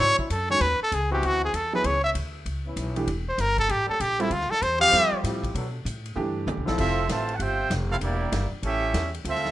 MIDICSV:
0, 0, Header, 1, 9, 480
1, 0, Start_track
1, 0, Tempo, 308483
1, 951, Time_signature, 4, 2, 24, 8
1, 14801, End_track
2, 0, Start_track
2, 0, Title_t, "Trumpet"
2, 0, Program_c, 0, 56
2, 0, Note_on_c, 0, 73, 109
2, 296, Note_off_c, 0, 73, 0
2, 305, Note_on_c, 0, 64, 51
2, 484, Note_on_c, 0, 69, 77
2, 507, Note_off_c, 0, 64, 0
2, 778, Note_off_c, 0, 69, 0
2, 787, Note_on_c, 0, 73, 105
2, 956, Note_on_c, 0, 71, 90
2, 980, Note_off_c, 0, 73, 0
2, 1258, Note_off_c, 0, 71, 0
2, 1289, Note_on_c, 0, 69, 99
2, 1467, Note_on_c, 0, 68, 85
2, 1490, Note_off_c, 0, 69, 0
2, 1747, Note_off_c, 0, 68, 0
2, 1756, Note_on_c, 0, 67, 82
2, 1965, Note_on_c, 0, 66, 95
2, 1988, Note_off_c, 0, 67, 0
2, 2243, Note_off_c, 0, 66, 0
2, 2254, Note_on_c, 0, 68, 93
2, 2418, Note_on_c, 0, 69, 90
2, 2442, Note_off_c, 0, 68, 0
2, 2710, Note_off_c, 0, 69, 0
2, 2725, Note_on_c, 0, 71, 97
2, 2893, Note_on_c, 0, 73, 92
2, 2916, Note_off_c, 0, 71, 0
2, 3161, Note_off_c, 0, 73, 0
2, 3170, Note_on_c, 0, 76, 91
2, 3277, Note_off_c, 0, 76, 0
2, 5117, Note_on_c, 0, 72, 88
2, 5301, Note_on_c, 0, 70, 100
2, 5324, Note_off_c, 0, 72, 0
2, 5582, Note_off_c, 0, 70, 0
2, 5592, Note_on_c, 0, 69, 106
2, 5774, Note_on_c, 0, 67, 98
2, 5797, Note_off_c, 0, 69, 0
2, 6047, Note_off_c, 0, 67, 0
2, 6057, Note_on_c, 0, 69, 94
2, 6245, Note_on_c, 0, 67, 95
2, 6269, Note_off_c, 0, 69, 0
2, 6555, Note_on_c, 0, 64, 82
2, 6578, Note_off_c, 0, 67, 0
2, 6731, Note_on_c, 0, 65, 82
2, 6754, Note_off_c, 0, 64, 0
2, 7012, Note_on_c, 0, 69, 94
2, 7035, Note_off_c, 0, 65, 0
2, 7198, Note_on_c, 0, 72, 86
2, 7221, Note_off_c, 0, 69, 0
2, 7473, Note_off_c, 0, 72, 0
2, 7483, Note_on_c, 0, 77, 118
2, 8098, Note_off_c, 0, 77, 0
2, 14801, End_track
3, 0, Start_track
3, 0, Title_t, "Trumpet section"
3, 0, Program_c, 1, 61
3, 10564, Note_on_c, 1, 60, 98
3, 10567, Note_on_c, 1, 69, 84
3, 10571, Note_on_c, 1, 76, 109
3, 10572, Note_on_c, 1, 65, 85
3, 11004, Note_off_c, 1, 60, 0
3, 11005, Note_off_c, 1, 69, 0
3, 11007, Note_off_c, 1, 76, 0
3, 11008, Note_off_c, 1, 65, 0
3, 11043, Note_on_c, 1, 72, 90
3, 11046, Note_on_c, 1, 65, 96
3, 11049, Note_on_c, 1, 76, 89
3, 11052, Note_on_c, 1, 81, 102
3, 11410, Note_off_c, 1, 72, 0
3, 11411, Note_off_c, 1, 65, 0
3, 11412, Note_off_c, 1, 76, 0
3, 11414, Note_off_c, 1, 81, 0
3, 11437, Note_on_c, 1, 78, 79
3, 11513, Note_off_c, 1, 78, 0
3, 11524, Note_on_c, 1, 76, 92
3, 11526, Note_on_c, 1, 79, 122
3, 11528, Note_on_c, 1, 65, 96
3, 11531, Note_on_c, 1, 72, 104
3, 11996, Note_off_c, 1, 76, 0
3, 11997, Note_off_c, 1, 79, 0
3, 11998, Note_off_c, 1, 65, 0
3, 12000, Note_off_c, 1, 72, 0
3, 12298, Note_on_c, 1, 69, 89
3, 12300, Note_on_c, 1, 60, 99
3, 12304, Note_on_c, 1, 77, 112
3, 12307, Note_on_c, 1, 64, 100
3, 12376, Note_off_c, 1, 69, 0
3, 12377, Note_off_c, 1, 60, 0
3, 12380, Note_off_c, 1, 77, 0
3, 12383, Note_off_c, 1, 64, 0
3, 12484, Note_on_c, 1, 64, 94
3, 12487, Note_on_c, 1, 58, 95
3, 12490, Note_on_c, 1, 67, 88
3, 12495, Note_on_c, 1, 74, 89
3, 13207, Note_off_c, 1, 64, 0
3, 13208, Note_off_c, 1, 58, 0
3, 13210, Note_off_c, 1, 67, 0
3, 13213, Note_off_c, 1, 74, 0
3, 13454, Note_on_c, 1, 76, 112
3, 13458, Note_on_c, 1, 61, 100
3, 13460, Note_on_c, 1, 69, 91
3, 13461, Note_on_c, 1, 67, 104
3, 14172, Note_off_c, 1, 76, 0
3, 14174, Note_off_c, 1, 61, 0
3, 14175, Note_off_c, 1, 67, 0
3, 14175, Note_off_c, 1, 69, 0
3, 14426, Note_on_c, 1, 65, 79
3, 14430, Note_on_c, 1, 76, 109
3, 14431, Note_on_c, 1, 60, 93
3, 14431, Note_on_c, 1, 69, 88
3, 14801, Note_off_c, 1, 60, 0
3, 14801, Note_off_c, 1, 65, 0
3, 14801, Note_off_c, 1, 69, 0
3, 14801, Note_off_c, 1, 76, 0
3, 14801, End_track
4, 0, Start_track
4, 0, Title_t, "Grand piano"
4, 0, Program_c, 2, 0
4, 773, Note_on_c, 2, 51, 63
4, 775, Note_on_c, 2, 56, 55
4, 778, Note_on_c, 2, 61, 60
4, 784, Note_on_c, 2, 66, 72
4, 932, Note_off_c, 2, 51, 0
4, 933, Note_off_c, 2, 56, 0
4, 935, Note_off_c, 2, 61, 0
4, 937, Note_off_c, 2, 66, 0
4, 2695, Note_on_c, 2, 54, 62
4, 2697, Note_on_c, 2, 59, 56
4, 2700, Note_on_c, 2, 64, 57
4, 2703, Note_on_c, 2, 68, 71
4, 2853, Note_off_c, 2, 54, 0
4, 2854, Note_off_c, 2, 59, 0
4, 2856, Note_off_c, 2, 64, 0
4, 2857, Note_off_c, 2, 68, 0
4, 4607, Note_on_c, 2, 52, 72
4, 4612, Note_on_c, 2, 62, 72
4, 4613, Note_on_c, 2, 57, 67
4, 4623, Note_on_c, 2, 67, 72
4, 4769, Note_off_c, 2, 52, 0
4, 4772, Note_off_c, 2, 62, 0
4, 4773, Note_off_c, 2, 57, 0
4, 4777, Note_off_c, 2, 67, 0
4, 6525, Note_on_c, 2, 55, 77
4, 6529, Note_on_c, 2, 60, 75
4, 6535, Note_on_c, 2, 65, 68
4, 6538, Note_on_c, 2, 69, 85
4, 6688, Note_off_c, 2, 55, 0
4, 6690, Note_off_c, 2, 60, 0
4, 6693, Note_off_c, 2, 65, 0
4, 6695, Note_off_c, 2, 69, 0
4, 7654, Note_on_c, 2, 55, 70
4, 7655, Note_on_c, 2, 60, 64
4, 7666, Note_on_c, 2, 65, 70
4, 7666, Note_on_c, 2, 69, 76
4, 8387, Note_off_c, 2, 55, 0
4, 8387, Note_off_c, 2, 60, 0
4, 8392, Note_off_c, 2, 65, 0
4, 8392, Note_off_c, 2, 69, 0
4, 9578, Note_on_c, 2, 52, 74
4, 9582, Note_on_c, 2, 62, 69
4, 9585, Note_on_c, 2, 57, 74
4, 9591, Note_on_c, 2, 67, 81
4, 10308, Note_off_c, 2, 52, 0
4, 10310, Note_off_c, 2, 62, 0
4, 10312, Note_off_c, 2, 57, 0
4, 10314, Note_off_c, 2, 67, 0
4, 14801, End_track
5, 0, Start_track
5, 0, Title_t, "Trombone section"
5, 0, Program_c, 3, 61
5, 0, Note_on_c, 3, 50, 107
5, 0, Note_on_c, 3, 54, 101
5, 0, Note_on_c, 3, 61, 98
5, 0, Note_on_c, 3, 64, 121
5, 434, Note_off_c, 3, 54, 0
5, 435, Note_off_c, 3, 61, 0
5, 436, Note_off_c, 3, 64, 0
5, 444, Note_off_c, 3, 50, 0
5, 1709, Note_on_c, 3, 66, 122
5, 1719, Note_on_c, 3, 59, 95
5, 1719, Note_on_c, 3, 60, 106
5, 1722, Note_on_c, 3, 52, 116
5, 2343, Note_off_c, 3, 66, 0
5, 2348, Note_off_c, 3, 59, 0
5, 2348, Note_off_c, 3, 60, 0
5, 2350, Note_off_c, 3, 52, 0
5, 2864, Note_on_c, 3, 68, 87
5, 2865, Note_on_c, 3, 59, 72
5, 2873, Note_on_c, 3, 61, 77
5, 2877, Note_on_c, 3, 52, 83
5, 3072, Note_off_c, 3, 68, 0
5, 3073, Note_off_c, 3, 59, 0
5, 3078, Note_off_c, 3, 61, 0
5, 3081, Note_off_c, 3, 52, 0
5, 4113, Note_on_c, 3, 59, 73
5, 4120, Note_on_c, 3, 52, 75
5, 4130, Note_on_c, 3, 61, 67
5, 4133, Note_on_c, 3, 64, 89
5, 4745, Note_off_c, 3, 59, 0
5, 4748, Note_off_c, 3, 52, 0
5, 4753, Note_off_c, 3, 61, 0
5, 4755, Note_off_c, 3, 64, 0
5, 6007, Note_on_c, 3, 69, 87
5, 6016, Note_on_c, 3, 58, 70
5, 6017, Note_on_c, 3, 55, 85
5, 6023, Note_on_c, 3, 61, 80
5, 6144, Note_off_c, 3, 69, 0
5, 6149, Note_off_c, 3, 58, 0
5, 6150, Note_off_c, 3, 55, 0
5, 6154, Note_off_c, 3, 61, 0
5, 7455, Note_on_c, 3, 67, 127
5, 7462, Note_on_c, 3, 60, 111
5, 7473, Note_on_c, 3, 53, 123
5, 8096, Note_off_c, 3, 67, 0
5, 8099, Note_off_c, 3, 60, 0
5, 8105, Note_off_c, 3, 53, 0
5, 8151, Note_on_c, 3, 53, 95
5, 8158, Note_on_c, 3, 60, 92
5, 8160, Note_on_c, 3, 64, 92
5, 8160, Note_on_c, 3, 67, 109
5, 8628, Note_on_c, 3, 54, 90
5, 8629, Note_on_c, 3, 62, 72
5, 8631, Note_off_c, 3, 53, 0
5, 8635, Note_off_c, 3, 60, 0
5, 8636, Note_off_c, 3, 64, 0
5, 8636, Note_off_c, 3, 67, 0
5, 8639, Note_on_c, 3, 59, 85
5, 8640, Note_on_c, 3, 69, 86
5, 8835, Note_off_c, 3, 54, 0
5, 8835, Note_off_c, 3, 62, 0
5, 8842, Note_off_c, 3, 59, 0
5, 8843, Note_off_c, 3, 69, 0
5, 10348, Note_on_c, 3, 64, 110
5, 10349, Note_on_c, 3, 60, 106
5, 10364, Note_on_c, 3, 53, 114
5, 10369, Note_on_c, 3, 69, 127
5, 10981, Note_off_c, 3, 64, 0
5, 10982, Note_off_c, 3, 60, 0
5, 10990, Note_off_c, 3, 53, 0
5, 10992, Note_off_c, 3, 69, 0
5, 14801, End_track
6, 0, Start_track
6, 0, Title_t, "Trombone section"
6, 0, Program_c, 4, 61
6, 10569, Note_on_c, 4, 65, 93
6, 10571, Note_on_c, 4, 60, 87
6, 10577, Note_on_c, 4, 57, 82
6, 11007, Note_off_c, 4, 60, 0
6, 11007, Note_off_c, 4, 65, 0
6, 11011, Note_off_c, 4, 57, 0
6, 11042, Note_on_c, 4, 48, 93
6, 11044, Note_on_c, 4, 52, 87
6, 11049, Note_on_c, 4, 57, 94
6, 11409, Note_off_c, 4, 48, 0
6, 11410, Note_off_c, 4, 52, 0
6, 11412, Note_off_c, 4, 57, 0
6, 11516, Note_on_c, 4, 67, 81
6, 11522, Note_on_c, 4, 65, 89
6, 11525, Note_on_c, 4, 60, 79
6, 11993, Note_off_c, 4, 67, 0
6, 11996, Note_off_c, 4, 65, 0
6, 11997, Note_off_c, 4, 60, 0
6, 12319, Note_on_c, 4, 60, 86
6, 12319, Note_on_c, 4, 65, 79
6, 12320, Note_on_c, 4, 57, 85
6, 12392, Note_off_c, 4, 60, 0
6, 12393, Note_off_c, 4, 57, 0
6, 12393, Note_off_c, 4, 65, 0
6, 12483, Note_on_c, 4, 58, 85
6, 12486, Note_on_c, 4, 62, 86
6, 12491, Note_on_c, 4, 55, 87
6, 13206, Note_off_c, 4, 58, 0
6, 13208, Note_off_c, 4, 62, 0
6, 13211, Note_off_c, 4, 55, 0
6, 13446, Note_on_c, 4, 61, 80
6, 13447, Note_on_c, 4, 55, 75
6, 13452, Note_on_c, 4, 64, 79
6, 14168, Note_off_c, 4, 55, 0
6, 14168, Note_off_c, 4, 61, 0
6, 14171, Note_off_c, 4, 64, 0
6, 14394, Note_on_c, 4, 57, 90
6, 14402, Note_on_c, 4, 60, 88
6, 14403, Note_on_c, 4, 65, 90
6, 14801, Note_off_c, 4, 57, 0
6, 14801, Note_off_c, 4, 60, 0
6, 14801, Note_off_c, 4, 65, 0
6, 14801, End_track
7, 0, Start_track
7, 0, Title_t, "Upright bass"
7, 0, Program_c, 5, 32
7, 0, Note_on_c, 5, 44, 92
7, 269, Note_off_c, 5, 44, 0
7, 468, Note_on_c, 5, 42, 98
7, 935, Note_off_c, 5, 42, 0
7, 942, Note_on_c, 5, 39, 99
7, 1230, Note_off_c, 5, 39, 0
7, 1426, Note_on_c, 5, 37, 100
7, 1894, Note_off_c, 5, 37, 0
7, 1908, Note_on_c, 5, 38, 93
7, 2375, Note_off_c, 5, 38, 0
7, 2387, Note_on_c, 5, 40, 98
7, 2855, Note_off_c, 5, 40, 0
7, 2865, Note_on_c, 5, 37, 89
7, 3334, Note_off_c, 5, 37, 0
7, 3342, Note_on_c, 5, 38, 93
7, 3812, Note_off_c, 5, 38, 0
7, 3820, Note_on_c, 5, 37, 80
7, 4291, Note_off_c, 5, 37, 0
7, 4299, Note_on_c, 5, 35, 99
7, 4771, Note_off_c, 5, 35, 0
7, 4783, Note_on_c, 5, 28, 103
7, 5249, Note_off_c, 5, 28, 0
7, 5258, Note_on_c, 5, 31, 94
7, 5730, Note_off_c, 5, 31, 0
7, 5743, Note_on_c, 5, 33, 97
7, 6031, Note_off_c, 5, 33, 0
7, 6224, Note_on_c, 5, 34, 101
7, 6690, Note_off_c, 5, 34, 0
7, 6700, Note_on_c, 5, 38, 105
7, 6989, Note_off_c, 5, 38, 0
7, 7187, Note_on_c, 5, 40, 104
7, 7654, Note_off_c, 5, 40, 0
7, 7662, Note_on_c, 5, 41, 89
7, 7950, Note_off_c, 5, 41, 0
7, 8149, Note_on_c, 5, 45, 105
7, 8615, Note_off_c, 5, 45, 0
7, 8629, Note_on_c, 5, 47, 95
7, 9095, Note_off_c, 5, 47, 0
7, 9107, Note_on_c, 5, 45, 96
7, 9575, Note_off_c, 5, 45, 0
7, 9582, Note_on_c, 5, 43, 89
7, 10052, Note_off_c, 5, 43, 0
7, 10065, Note_on_c, 5, 40, 90
7, 10228, Note_on_c, 5, 36, 71
7, 10251, Note_off_c, 5, 40, 0
7, 10379, Note_off_c, 5, 36, 0
7, 10389, Note_on_c, 5, 34, 75
7, 10538, Note_off_c, 5, 34, 0
7, 10548, Note_on_c, 5, 29, 97
7, 11014, Note_off_c, 5, 29, 0
7, 11028, Note_on_c, 5, 33, 100
7, 11494, Note_off_c, 5, 33, 0
7, 11504, Note_on_c, 5, 31, 87
7, 11972, Note_off_c, 5, 31, 0
7, 11985, Note_on_c, 5, 29, 101
7, 12452, Note_off_c, 5, 29, 0
7, 12464, Note_on_c, 5, 28, 96
7, 12932, Note_off_c, 5, 28, 0
7, 12949, Note_on_c, 5, 31, 97
7, 13232, Note_off_c, 5, 31, 0
7, 13421, Note_on_c, 5, 33, 90
7, 13890, Note_off_c, 5, 33, 0
7, 13909, Note_on_c, 5, 40, 93
7, 14374, Note_off_c, 5, 40, 0
7, 14387, Note_on_c, 5, 38, 99
7, 14801, Note_off_c, 5, 38, 0
7, 14801, End_track
8, 0, Start_track
8, 0, Title_t, "Muted upright bass strokes"
8, 287, Note_on_c, 9, 29, 47
8, 442, Note_off_c, 9, 29, 0
8, 1253, Note_on_c, 9, 29, 41
8, 1408, Note_off_c, 9, 29, 0
8, 6052, Note_on_c, 9, 29, 43
8, 6208, Note_off_c, 9, 29, 0
8, 7009, Note_on_c, 9, 29, 44
8, 7164, Note_off_c, 9, 29, 0
8, 7972, Note_on_c, 9, 29, 47
8, 8128, Note_off_c, 9, 29, 0
8, 13254, Note_on_c, 9, 29, 43
8, 13409, Note_off_c, 9, 29, 0
8, 14801, End_track
9, 0, Start_track
9, 0, Title_t, "Drums"
9, 293, Note_on_c, 9, 36, 62
9, 449, Note_off_c, 9, 36, 0
9, 470, Note_on_c, 9, 36, 20
9, 471, Note_on_c, 9, 44, 60
9, 471, Note_on_c, 9, 51, 83
9, 625, Note_off_c, 9, 36, 0
9, 626, Note_off_c, 9, 44, 0
9, 626, Note_off_c, 9, 51, 0
9, 947, Note_on_c, 9, 51, 67
9, 949, Note_on_c, 9, 36, 28
9, 1102, Note_off_c, 9, 51, 0
9, 1105, Note_off_c, 9, 36, 0
9, 1430, Note_on_c, 9, 36, 26
9, 1432, Note_on_c, 9, 44, 63
9, 1432, Note_on_c, 9, 51, 77
9, 1586, Note_off_c, 9, 36, 0
9, 1587, Note_off_c, 9, 44, 0
9, 1587, Note_off_c, 9, 51, 0
9, 1909, Note_on_c, 9, 36, 21
9, 1912, Note_on_c, 9, 51, 68
9, 2065, Note_off_c, 9, 36, 0
9, 2067, Note_off_c, 9, 51, 0
9, 2390, Note_on_c, 9, 36, 24
9, 2392, Note_on_c, 9, 44, 57
9, 2392, Note_on_c, 9, 51, 87
9, 2545, Note_off_c, 9, 36, 0
9, 2548, Note_off_c, 9, 44, 0
9, 2548, Note_off_c, 9, 51, 0
9, 2866, Note_on_c, 9, 51, 77
9, 2867, Note_on_c, 9, 36, 26
9, 3022, Note_off_c, 9, 51, 0
9, 3023, Note_off_c, 9, 36, 0
9, 3344, Note_on_c, 9, 36, 24
9, 3346, Note_on_c, 9, 44, 54
9, 3346, Note_on_c, 9, 51, 85
9, 3500, Note_off_c, 9, 36, 0
9, 3502, Note_off_c, 9, 44, 0
9, 3502, Note_off_c, 9, 51, 0
9, 3824, Note_on_c, 9, 36, 24
9, 3827, Note_on_c, 9, 51, 66
9, 3979, Note_off_c, 9, 36, 0
9, 3982, Note_off_c, 9, 51, 0
9, 4304, Note_on_c, 9, 36, 22
9, 4305, Note_on_c, 9, 44, 71
9, 4305, Note_on_c, 9, 51, 79
9, 4460, Note_off_c, 9, 36, 0
9, 4460, Note_off_c, 9, 44, 0
9, 4460, Note_off_c, 9, 51, 0
9, 4608, Note_on_c, 9, 51, 61
9, 4764, Note_off_c, 9, 51, 0
9, 4784, Note_on_c, 9, 36, 24
9, 4785, Note_on_c, 9, 51, 77
9, 4940, Note_off_c, 9, 36, 0
9, 4941, Note_off_c, 9, 51, 0
9, 5262, Note_on_c, 9, 36, 22
9, 5265, Note_on_c, 9, 38, 42
9, 5265, Note_on_c, 9, 44, 67
9, 5265, Note_on_c, 9, 51, 85
9, 5418, Note_off_c, 9, 36, 0
9, 5420, Note_off_c, 9, 38, 0
9, 5420, Note_off_c, 9, 44, 0
9, 5420, Note_off_c, 9, 51, 0
9, 5569, Note_on_c, 9, 36, 64
9, 5571, Note_on_c, 9, 51, 49
9, 5724, Note_off_c, 9, 36, 0
9, 5727, Note_off_c, 9, 51, 0
9, 5745, Note_on_c, 9, 36, 27
9, 5747, Note_on_c, 9, 51, 72
9, 5901, Note_off_c, 9, 36, 0
9, 5903, Note_off_c, 9, 51, 0
9, 6225, Note_on_c, 9, 36, 22
9, 6229, Note_on_c, 9, 44, 66
9, 6229, Note_on_c, 9, 51, 86
9, 6380, Note_off_c, 9, 36, 0
9, 6385, Note_off_c, 9, 44, 0
9, 6385, Note_off_c, 9, 51, 0
9, 6531, Note_on_c, 9, 51, 56
9, 6686, Note_off_c, 9, 51, 0
9, 6701, Note_on_c, 9, 36, 28
9, 6702, Note_on_c, 9, 51, 68
9, 6857, Note_off_c, 9, 36, 0
9, 6857, Note_off_c, 9, 51, 0
9, 6864, Note_on_c, 9, 38, 35
9, 7020, Note_off_c, 9, 38, 0
9, 7028, Note_on_c, 9, 38, 52
9, 7184, Note_off_c, 9, 38, 0
9, 7187, Note_on_c, 9, 36, 30
9, 7195, Note_on_c, 9, 44, 61
9, 7195, Note_on_c, 9, 51, 76
9, 7342, Note_off_c, 9, 36, 0
9, 7350, Note_off_c, 9, 44, 0
9, 7350, Note_off_c, 9, 51, 0
9, 7496, Note_on_c, 9, 51, 58
9, 7652, Note_off_c, 9, 51, 0
9, 7669, Note_on_c, 9, 36, 26
9, 7678, Note_on_c, 9, 51, 68
9, 7825, Note_off_c, 9, 36, 0
9, 7833, Note_off_c, 9, 51, 0
9, 8151, Note_on_c, 9, 36, 29
9, 8160, Note_on_c, 9, 38, 42
9, 8160, Note_on_c, 9, 44, 76
9, 8160, Note_on_c, 9, 51, 89
9, 8307, Note_off_c, 9, 36, 0
9, 8315, Note_off_c, 9, 38, 0
9, 8315, Note_off_c, 9, 44, 0
9, 8315, Note_off_c, 9, 51, 0
9, 8458, Note_on_c, 9, 36, 67
9, 8468, Note_on_c, 9, 51, 60
9, 8614, Note_off_c, 9, 36, 0
9, 8624, Note_off_c, 9, 51, 0
9, 8634, Note_on_c, 9, 36, 25
9, 8641, Note_on_c, 9, 51, 74
9, 8790, Note_off_c, 9, 36, 0
9, 8797, Note_off_c, 9, 51, 0
9, 9113, Note_on_c, 9, 36, 27
9, 9120, Note_on_c, 9, 44, 72
9, 9120, Note_on_c, 9, 51, 76
9, 9269, Note_off_c, 9, 36, 0
9, 9276, Note_off_c, 9, 44, 0
9, 9276, Note_off_c, 9, 51, 0
9, 9422, Note_on_c, 9, 51, 55
9, 9577, Note_off_c, 9, 51, 0
9, 9600, Note_on_c, 9, 48, 55
9, 9755, Note_off_c, 9, 48, 0
9, 10077, Note_on_c, 9, 44, 57
9, 10077, Note_on_c, 9, 48, 94
9, 10233, Note_off_c, 9, 44, 0
9, 10233, Note_off_c, 9, 48, 0
9, 10385, Note_on_c, 9, 38, 85
9, 10540, Note_off_c, 9, 38, 0
9, 10551, Note_on_c, 9, 36, 78
9, 10556, Note_on_c, 9, 49, 85
9, 10707, Note_off_c, 9, 36, 0
9, 10711, Note_off_c, 9, 49, 0
9, 11030, Note_on_c, 9, 36, 27
9, 11037, Note_on_c, 9, 38, 83
9, 11037, Note_on_c, 9, 44, 74
9, 11037, Note_on_c, 9, 51, 84
9, 11186, Note_off_c, 9, 36, 0
9, 11193, Note_off_c, 9, 38, 0
9, 11193, Note_off_c, 9, 44, 0
9, 11193, Note_off_c, 9, 51, 0
9, 11336, Note_on_c, 9, 51, 47
9, 11492, Note_off_c, 9, 51, 0
9, 11508, Note_on_c, 9, 36, 23
9, 11512, Note_on_c, 9, 51, 74
9, 11664, Note_off_c, 9, 36, 0
9, 11668, Note_off_c, 9, 51, 0
9, 11987, Note_on_c, 9, 36, 18
9, 11992, Note_on_c, 9, 38, 83
9, 11992, Note_on_c, 9, 44, 66
9, 11992, Note_on_c, 9, 51, 83
9, 12143, Note_off_c, 9, 36, 0
9, 12147, Note_off_c, 9, 38, 0
9, 12147, Note_off_c, 9, 44, 0
9, 12147, Note_off_c, 9, 51, 0
9, 12467, Note_on_c, 9, 36, 19
9, 12467, Note_on_c, 9, 51, 71
9, 12623, Note_off_c, 9, 36, 0
9, 12623, Note_off_c, 9, 51, 0
9, 12948, Note_on_c, 9, 36, 23
9, 12953, Note_on_c, 9, 38, 91
9, 12953, Note_on_c, 9, 44, 68
9, 12953, Note_on_c, 9, 51, 86
9, 13104, Note_off_c, 9, 36, 0
9, 13109, Note_off_c, 9, 38, 0
9, 13109, Note_off_c, 9, 44, 0
9, 13109, Note_off_c, 9, 51, 0
9, 13426, Note_on_c, 9, 36, 23
9, 13428, Note_on_c, 9, 51, 69
9, 13582, Note_off_c, 9, 36, 0
9, 13584, Note_off_c, 9, 51, 0
9, 13909, Note_on_c, 9, 36, 30
9, 13913, Note_on_c, 9, 38, 89
9, 13913, Note_on_c, 9, 44, 60
9, 13913, Note_on_c, 9, 51, 85
9, 14065, Note_off_c, 9, 36, 0
9, 14069, Note_off_c, 9, 38, 0
9, 14069, Note_off_c, 9, 44, 0
9, 14069, Note_off_c, 9, 51, 0
9, 14229, Note_on_c, 9, 51, 57
9, 14384, Note_off_c, 9, 51, 0
9, 14391, Note_on_c, 9, 36, 23
9, 14396, Note_on_c, 9, 51, 74
9, 14546, Note_off_c, 9, 36, 0
9, 14551, Note_off_c, 9, 51, 0
9, 14555, Note_on_c, 9, 38, 35
9, 14709, Note_off_c, 9, 38, 0
9, 14709, Note_on_c, 9, 38, 57
9, 14801, Note_off_c, 9, 38, 0
9, 14801, End_track
0, 0, End_of_file